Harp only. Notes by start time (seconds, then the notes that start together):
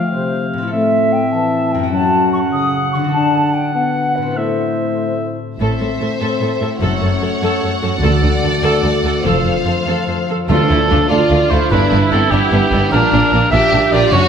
Already playing: F3 A3 F4 A4
0.54 A2
0.58 C4
0.62 E4
0.67 A4
1.74 F#2
1.79 C#4
1.83 F#4
1.88 A4
2.95 D3
2.99 D4
3.04 F#4
3.09 A4
4.18 A2
4.22 C4
4.26 E4
4.31 A4
5.59 A2
5.79 C4
6.00 A4
6.20 C5
6.40 A4
6.61 E4
6.80 F#2
7.00 C#4
7.21 A4
7.41 C#5
7.61 A4
7.82 F#4
8.01 D3
8.21 D4
8.42 A4
8.62 D5
8.83 A4
9.04 F#4
9.23 F3
9.44 F4
9.65 C5
9.86 F5
10.07 C5
10.28 A4
10.48 D3
10.69 A4
10.89 F4
11.09 A4
11.30 D4
11.50 A4
11.70 G2
11.91 B4
12.11 G4
12.30 B4
12.50 D4
12.70 B4
12.91 A#2
13.11 D5
13.31 F4
13.51 D5
13.71 D4
13.91 D5
14.12 F#2